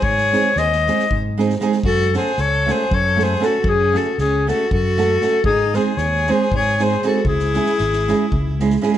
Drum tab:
SD |-oo-oooo--oooo|--o-o-o---o-o-|--o-o-o---o-o-|--o-o-o---o-o-|
BD |o-------o-----|o-------o-----|o-------o-----|o-------o-----|

SD |-oooooo---oooo|
BD |o-------o-----|